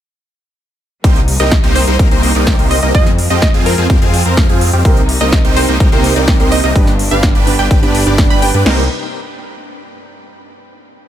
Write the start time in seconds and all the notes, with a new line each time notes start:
1.04 C2 C3 G3 A#3 C4 D#4 G4 C5, kick, closed hi-hat
1.16 closed hi-hat
1.28 open hi-hat
1.40 C2 A#3 C4 D#4 G4 A#4 D#5, closed hi-hat
1.52 kick, snare, closed hi-hat
1.64 C2 A#3 C4 D#4 G4 C5, closed hi-hat
1.76 C5, open hi-hat
1.87 C2 A#3 C4 D#4 G4 C5, closed hi-hat
1.99 C2 A#3 C4 D#4 G4 A#4, kick, closed hi-hat
2.11 C2 A#3 C4 D#4 G4 C5, closed hi-hat
2.23 open hi-hat
2.35 C2 A#3 C4 D#4 G4 D5, closed hi-hat
2.47 kick, snare, closed hi-hat
2.59 C2 A#3 C4 D#4 G4 C5, closed hi-hat
2.71 D#5, open hi-hat
2.83 C2 A#3 C4 D#4 G4 A#4 D#5, closed hi-hat
2.95 F2 F3 G#3 C4 F4 G#4 D#5, kick, closed hi-hat
3.06 snare, closed hi-hat
3.18 open hi-hat
3.30 F2 C4 F4 G4 D#5, closed hi-hat
3.42 D#5, kick, snare, closed hi-hat
3.54 F2 C4 F4 G#4, closed hi-hat
3.66 A#4, open hi-hat
3.78 F2 C4 F4 G#4, closed hi-hat
3.90 F2 C4 F4 G4, kick, closed hi-hat
4.02 F2 C4 F4 G#4, closed hi-hat
4.14 open hi-hat
4.26 F2 C4 F4 A#4, closed hi-hat
4.37 kick, snare, closed hi-hat
4.49 F2 C4 F4 G#4, closed hi-hat
4.61 open hi-hat
4.73 F2 C4 F4 G4, closed hi-hat
4.85 C2 C3 G3 A#3 C4 D#4 G4 A#4 C5, kick, closed hi-hat
4.97 closed hi-hat
5.09 open hi-hat
5.20 C2 C3 A#3 C4 D#4 G4 A#4 D#5, closed hi-hat
5.32 kick, snare, closed hi-hat
5.45 C2 A#3 C4 D#4 G4 C5, closed hi-hat
5.56 C3 C4 D#4 G4 A#4 C5, open hi-hat
5.68 C2 A#3 C4 D#4 G4 C5, closed hi-hat
5.80 C2 A#3 C4 D#4 G4 A#4, kick, closed hi-hat
5.92 C2 C3 A#3 C4 D#4 G4 A#4 C5, closed hi-hat
6.04 open hi-hat
6.15 C2 C3 A#3 C4 D#4 G4 A#4 D5, closed hi-hat
6.28 kick, snare, closed hi-hat
6.39 C2 C3 A#3 C4 D#4 G4 A#4 C5, closed hi-hat
6.52 D#5, open hi-hat
6.64 C2 A#3 C4 D#4 G4 A#4 D#5, closed hi-hat
6.75 G1 G2 B3 D4 G4 B4, kick, closed hi-hat
6.87 snare, closed hi-hat
6.99 open hi-hat
7.11 G1 G2 B3 D4 G4 B4 F5, closed hi-hat
7.23 kick, snare, closed hi-hat
7.35 G1 D4 G4 B4, closed hi-hat
7.46 G2 B3 D4 G4 B4, open hi-hat
7.59 G1 D4 G4 B4 G5, closed hi-hat
7.71 G1 D4 G4 B4, kick, closed hi-hat
7.82 G1 G2 B3 D4 G4 B4, closed hi-hat
7.95 open hi-hat
8.06 G1 G2 B3 D4 G4 B4 D5, closed hi-hat
8.18 kick, snare, closed hi-hat
8.30 G1 D4 G4 B4 B5, closed hi-hat
8.42 B3 D4 G4 B4 G5, open hi-hat
8.54 G2 B3 D4 G4 B4, closed hi-hat
8.64 C2 C3 G3 A#3 C4 D#4 G4 A#4 C5, snare, crash